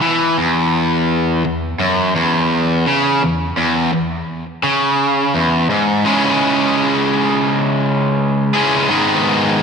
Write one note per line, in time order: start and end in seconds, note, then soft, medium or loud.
0.02 0.36 E3 medium
0.38 1.43 E2 loud
1.45 1.73 E2 medium
1.80 2.14 F#2 medium
2.15 2.85 E2 loud
2.86 3.21 C#3 loud
3.23 3.51 E2 medium
3.58 3.92 E2 loud
3.93 4.21 E2 medium
4.64 5.33 C#3 medium
5.35 5.69 E2 loud
5.70 6.04 G#2 medium
6.05 8.52 C#3 medium
6.05 8.55 G#3 medium
6.05 8.53 C#4 medium
6.05 8.53 E4 medium
6.05 8.53 G#4 medium
8.54 8.89 C#3 medium
8.54 8.90 G#3 medium
8.54 8.88 C#4 medium
8.54 8.88 E4 medium
8.54 8.91 G#4 medium
8.89 9.62 G#2 medium
8.89 9.62 D#3 medium
8.89 9.62 G#3 medium
8.89 9.62 B3 medium
8.89 9.62 D#4 medium
8.89 9.62 G#4 medium